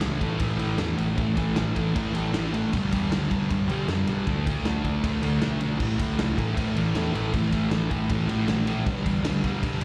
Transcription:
0.01 picked electric bass C#2, distorted electric guitar A2 E3 A3, snare, ride
0.21 picked electric bass A1, distorted electric guitar A2 E3 A3, kick, ride
0.39 picked electric bass A1, distorted electric guitar A2 E3 A3, kick, ride
0.57 picked electric bass A1, distorted electric guitar A2 E3 A3, ride
0.78 picked electric bass E2, distorted electric guitar A2 E3 A3, snare, ride
0.97 picked electric bass A1, distorted electric guitar A2 E3 A3, ride
1.15 picked electric bass A1, distorted electric guitar A2 E3 A3, kick, ride
1.36 distorted electric guitar A2 E3 A3, kick, ride
1.55 picked electric bass A1, distorted electric guitar A2 E3 A3, snare, ride
1.74 picked electric bass A1, distorted electric guitar A2 E3 A3, kick, ride
1.94 picked electric bass A1, distorted electric guitar A2 E3 A3, kick, ride
2.14 picked electric bass A1, distorted electric guitar A2 E3 A3, ride
2.32 picked electric bass A1, distorted electric guitar A2 E3 A3, snare, ride
2.53 distorted electric guitar A2 E3 A3, ride
2.73 picked electric bass B1, distorted electric guitar G2 D3 G3, kick, ride
2.92 picked electric bass E2, distorted electric guitar G2 D3 G3, kick, ride
3.10 picked electric bass D2, distorted electric guitar G2 D3 G3, snare, ride
3.29 picked electric bass B1, distorted electric guitar G2 D3 G3, kick, ride
3.49 picked electric bass B1, distorted electric guitar G2 D3 G3, kick, ride
3.68 picked electric bass B1, distorted electric guitar G2 D3 G3, ride
3.88 picked electric bass F#2, distorted electric guitar G2 D3 G3, snare, ride
4.07 picked electric bass B1, distorted electric guitar G2 D3 G3, ride
4.27 picked electric bass D2, distorted electric guitar D3 A3 D4, kick, ride
4.46 distorted electric guitar D3 A3 D4, kick, ride
4.64 picked electric bass D2, distorted electric guitar D3 A3, snare, ride
4.68 distorted electric guitar D4
4.84 picked electric bass D2, distorted electric guitar D3 A3 D4, kick, ride
5.03 picked electric bass D2, distorted electric guitar D3 A3 D4, kick, ride
5.22 picked electric bass D2, distorted electric guitar D3 A3 D4, ride
5.40 picked electric bass B1, distorted electric guitar D3 A3 D4, snare, ride
5.61 distorted electric guitar D3 A3 D4, ride
5.78 picked electric bass A1, distorted electric guitar A2 E3 A3, kick, crash
5.90 snare
5.98 picked electric bass D2, distorted electric guitar A2 E3 A3, kick, ride
6.19 picked electric bass C#2, distorted electric guitar A2 E3 A3, snare, ride
6.37 picked electric bass A1, distorted electric guitar A2 E3 A3, kick, ride
6.55 picked electric bass A1, distorted electric guitar A2 E3 A3, kick, ride
6.76 picked electric bass A1, distorted electric guitar A2 E3 A3, ride
6.95 picked electric bass E2, distorted electric guitar A2 E3 A3, snare, ride
7.14 picked electric bass A1, distorted electric guitar A2 E3 A3, ride
7.33 picked electric bass A1, distorted electric guitar A2 E3 A3, kick, ride
7.43 snare
7.51 distorted electric guitar A2 E3 A3, kick, ride
7.70 picked electric bass A1, distorted electric guitar A2 E3 A3, snare, ride
7.90 picked electric bass A1, distorted electric guitar A2 E3 A3, kick, ride
8.09 picked electric bass A1, distorted electric guitar A2 E3 A3, kick, ride
8.29 picked electric bass A1, distorted electric guitar A2 E3 A3, ride
8.47 picked electric bass A#1, distorted electric guitar A2 E3 A3, snare, ride
8.67 distorted electric guitar A2 E3 A3, ride
8.84 picked electric bass B1, distorted electric guitar G2 D3 G3, kick, ride
8.96 snare
9.05 picked electric bass E2, distorted electric guitar G2 D3 G3, kick, ride
9.24 picked electric bass D2, distorted electric guitar G2 D3 G3, snare, ride
9.43 picked electric bass B1, distorted electric guitar G2 D3 G3, kick, ride
9.62 picked electric bass B1, distorted electric guitar G2 D3 G3, kick, ride
9.81 ride

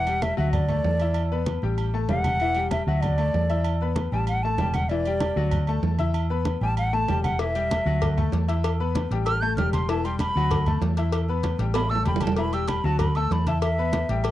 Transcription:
Already playing: fingered electric bass E1, flute F#5
0.07 grand piano G3 G4 G5, high conga, low agogo
0.22 flute E5, high conga, low timbale, low agogo
0.37 fingered electric bass D2, grand piano F#3 F#4 F#5, flute E5, high conga
0.52 flute D5, high conga, low conga, low agogo
0.68 grand piano A3 A4 A5, high conga, low conga, low agogo
0.84 fingered electric bass E2, high conga, low timbale
0.99 grand piano E4 E5 E6, low agogo
1.14 high conga, low agogo
1.32 grand piano B3 B4 B5, high conga
1.46 high conga, low timbale, low agogo
1.62 fingered electric bass A1, grand piano G3 G4 G5, high conga
1.78 high conga, low agogo
1.94 grand piano A3 A4 A5, high conga
2.09 fingered electric bass E1, grand piano G3 G4 E5, flute F#5, high conga, low timbale, low agogo
2.24 high conga, low agogo
2.40 grand piano E3 E4 E5, high conga, low agogo
2.55 grand piano G3 G4 G5, high conga, low agogo
2.71 flute E5, high conga, low timbale, low agogo
2.87 fingered electric bass D2, grand piano F#3 F#4 F#5, flute E5, high conga
3.01 flute D5, high conga, low conga, low agogo
3.18 grand piano A3 A4 A5, high conga, low agogo
3.34 fingered electric bass E2, high conga, low timbale
3.50 grand piano E4 E5 E6, low agogo
3.64 high conga, low agogo
3.81 grand piano B3 B4 B5, high conga
3.96 high conga, low timbale, low agogo
4.12 fingered electric bass A1, grand piano G3 G4 G5, flute A5, high conga
4.27 flute F#5, high conga, low agogo
4.43 grand piano A3 A4 A5, flute A5, high conga
4.58 fingered electric bass E1, grand piano G3 G4 G5, high conga, low timbale, low agogo
4.74 flute F#5, high conga, low agogo
4.89 grand piano E3 E4 E5, flute D5, high conga, low agogo
5.05 grand piano G3 G4 G5, high conga, low agogo
5.20 high conga, low timbale, low agogo
5.36 fingered electric bass D2, grand piano F#3 F#4 F#5, high conga
5.51 high conga, low conga, low agogo
5.67 grand piano A3 A4 A5, high conga, low agogo
5.83 fingered electric bass E2, high conga, low timbale
5.99 grand piano E4 E5 E6, high conga, low agogo
6.14 high conga, low agogo
6.30 grand piano B3 B4 B5, high conga
6.45 high conga, low timbale, low agogo
6.61 fingered electric bass A1, grand piano G3 G4 G5, flute A5, high conga
6.77 flute F#5, high conga, low agogo
6.93 grand piano A3 A4 A5, flute A5, high conga
7.08 fingered electric bass E1, grand piano G3 G4 G5, high conga, low timbale, low agogo
7.24 flute F#5, high conga, low agogo
7.39 grand piano E3 E4 E5, flute E5, cowbell, high conga, low agogo
7.55 grand piano G3 G4 G5, high conga, low agogo
7.71 cowbell, high conga, low timbale, low agogo
7.86 fingered electric bass D2, grand piano F#3 F#4 F#5, high conga
8.02 cowbell, high conga, low conga, low agogo
8.17 grand piano A3 A4 A5, high conga, low conga, low agogo
8.32 fingered electric bass E2, cowbell, high conga, low timbale
8.48 grand piano E4 E5 E6, cowbell, low agogo
8.64 cowbell, high conga, low agogo
8.80 grand piano B3 B4 B5, high conga
8.95 cowbell, high conga, low timbale, low agogo
9.11 fingered electric bass A1, grand piano G3 G4 G5, cowbell, high conga
9.26 flute F6, cowbell, high conga, low agogo
9.41 grand piano A3 A4 A5, flute G6, high conga
9.57 fingered electric bass E1, grand piano G3 G4 G5, flute F6, cowbell, high conga, low timbale, low agogo
9.73 flute C6, cowbell, high conga, low agogo
9.89 grand piano E3 E4 E5, flute A5, cowbell, high conga, low agogo
10.04 grand piano G3 G4 G5, flute C6, high conga, low agogo
10.19 flute B5, cowbell, high conga, low timbale, low agogo
10.35 fingered electric bass D2, grand piano F#3 F#4 F#5, high conga
10.51 cowbell, high conga, low conga, low agogo
10.66 grand piano A3 A4 A5, high conga, low conga, low agogo
10.81 fingered electric bass E2, cowbell, high conga, low timbale
10.97 grand piano E4 E5 E6, cowbell, low agogo
11.12 cowbell, high conga, low agogo
11.29 grand piano B3 B4 B5, high conga
11.43 cowbell, high conga, low timbale, low agogo
11.59 fingered electric bass A1, grand piano G3 G4 G5, cowbell, high conga
11.74 flute B5, cowbell, high conga, high timbale, low agogo
11.90 grand piano A3 A4 A5, flute E6, high conga
11.95 low timbale
12.05 fingered electric bass E1, grand piano G3 G4 G5, flute B5, cowbell, high conga, low agogo
12.16 low timbale
12.20 flute A5, cowbell, high conga, low agogo
12.27 low timbale
12.37 grand piano E3 E4 E5, flute B5, cowbell, high conga, low agogo
12.53 grand piano G3 G4 G5, flute E6, high conga, low agogo
12.68 flute B5, cowbell, high conga, low timbale, low agogo
12.84 fingered electric bass D2, grand piano F#3 F#4 F#5, flute A5, high conga
12.99 flute B5, cowbell, high conga, low conga, low agogo
13.15 grand piano A3 A4 A5, flute E6, high conga, low agogo
13.31 fingered electric bass E2, flute B5, cowbell, high conga, low timbale
13.47 grand piano E4 E5 E6, flute A5, cowbell, high conga, low agogo
13.62 flute E5, cowbell, high conga, low agogo
13.78 grand piano B3 B4 B5, high conga
13.93 cowbell, high conga, low timbale, low agogo
14.09 fingered electric bass A1, grand piano G3 G4 G5, cowbell, high conga
14.24 cowbell, high conga, low agogo

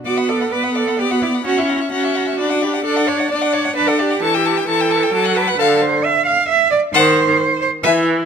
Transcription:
0.05 viola B3, cello F#4, violin D5 D6
0.18 violin F#5 B5
0.28 cello A4, violin D5 D6
0.40 violin F#5 B5
0.51 viola B3, cello B4, violin D5 D6
0.63 violin F#5 B5
0.75 cello A4, violin D5 D6
0.88 violin F#5 B5
0.98 viola B3, cello G4, violin D5 D6
1.11 cello F#4, violin F#5 B5
1.22 cello E4, violin D5 D6
1.34 violin F#5 B5
1.45 viola C#4, cello F#4, violin F#5 A#5
1.57 cello E4, violin E5 C#6
1.69 cello E4, violin F#5 A#5
1.80 violin E5 C#6
1.91 viola C#4, cello F#4, violin F#5 A#5
2.04 violin E5 C#6
2.15 violin F#5 A#5
2.27 violin E5 C#6
2.38 viola D4, violin D5 B5
2.50 violin F#5 D6
2.62 cello G4, violin D5 B5
2.74 violin F#5 D6
2.84 viola D4, cello A4, violin D5 A5
2.96 violin F#5 D6
3.07 cello C#5, violin D5 A5
3.19 violin F#5 D6
3.30 viola D4, violin D5 A5, cello D5
3.41 violin F#5 D6
3.53 cello C#5, violin D5 A5
3.64 violin F#5 D6
3.76 viola D4, cello B4, violin D5 A5
3.87 cello A4, violin F#5 D6
3.99 cello G4, violin D5 A5
4.10 violin F#5 D6
4.22 viola E3, cello A4, violin A5 C#6
4.34 cello G4, violin G5 E6
4.45 cello G4, violin A5 C#6
4.57 violin G5 E6
4.68 viola E3, cello A4, violin A5 C#6
4.80 violin G5 E6
4.91 violin A5 C#6
5.03 violin G5 E6
5.13 viola F#3, violin A5 D6
5.25 violin F#5 F#6
5.36 cello B4, violin A5 D6
5.48 violin F#5 F#6
5.58 viola D3, cello A4, violin F5 A5
5.81 cello C5
6.04 cello E5
6.26 cello F5
6.49 cello E5
6.71 cello D5
6.94 viola D#3, cello C5, violin F#5 A5
7.61 cello C5
7.83 viola E3, cello B4, violin E5 G#5

